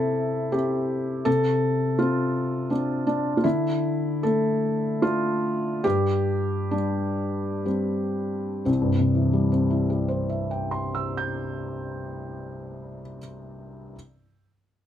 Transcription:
felt piano
Already playing: C3 C4 E4 A4
0.52 C4 G4
1.25 C3 A4
1.99 C4 F4
2.70 C4 D4
3.07 D4
3.37 F4
3.44 D3 E4
4.23 A3 A4
5.02 A3 D4 F4
5.84 G2 G4
6.71 G3 D4
7.65 G3 C4
8.65 C2 C4
8.82 G2
8.99 C3
9.15 E3
9.33 G3
9.52 C4
9.70 E4
9.90 G4
10.08 C5
10.29 E5
10.51 G5
10.71 C6
10.95 E6
11.17 G6

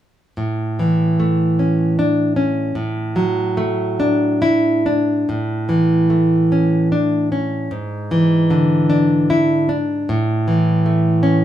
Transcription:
nylon-string guitar
0.37 A2
0.79 E3
1.20 A3
1.59 C#4
1.99 D4
2.36 C#4
2.75 A2
3.16 F#3
3.57 A3
4.00 D4
4.42 E4
4.86 D4
5.29 A2
5.69 E3
6.10 A3
6.52 C#4
6.92 D4
7.32 C#4
7.71 G#2
8.11 E3
8.50 D3
8.90 D4
9.30 E4
9.69 D4
10.09 A2
10.48 E3
10.86 A3
11.23 C#4

